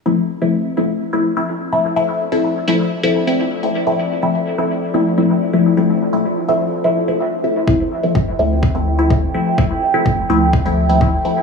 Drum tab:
BD |--------|--------|--------|--------|

BD |o-o-o-o-|o-o-o-o-|